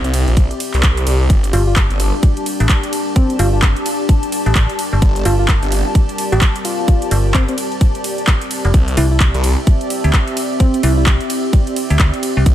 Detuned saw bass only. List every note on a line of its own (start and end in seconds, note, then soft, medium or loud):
0.04 0.25 C2 medium
0.28 0.49 A#1 loud
0.74 1.05 C2 medium
1.07 1.28 C2 loud
1.30 1.52 G1 loud
1.90 2.11 G1 medium
5.02 5.24 G1 medium
5.62 5.84 G1 loud
8.74 8.96 C2 loud
9.34 9.56 C2 loud
12.46 12.55 C2 loud